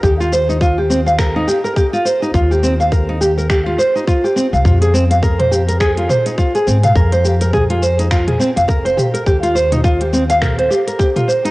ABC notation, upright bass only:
X:1
M:4/4
L:1/16
Q:"Swing 16ths" 1/4=104
K:Ebmix
V:1 name="Upright bass" clef=bass
E,,8- E,,2 z6 | E,,8- E,,2 z4 z C,, | F,,8- F,,2 z4 A,,2 | F,,8- F,,2 z F,,,3 z2 |
E,,8- E,,2 z6 |]